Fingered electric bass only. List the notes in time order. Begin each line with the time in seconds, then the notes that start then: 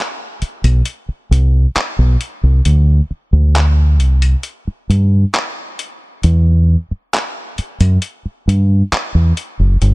0.42 muted fingered electric bass stroke
0.64 B1
1.09 muted fingered electric bass stroke
1.31 C2
1.76 muted fingered electric bass stroke
1.99 B1
2.43 C2
2.66 D2
3.11 muted fingered electric bass stroke
3.33 D2
4.00 C2
4.67 muted fingered electric bass stroke
4.90 G2
6.24 E2
6.91 muted fingered electric bass stroke
7.59 muted fingered electric bass stroke
7.80 F#2
8.25 muted fingered electric bass stroke
8.48 G2
8.92 muted fingered electric bass stroke
9.15 E2
9.59 F#1
9.82 G1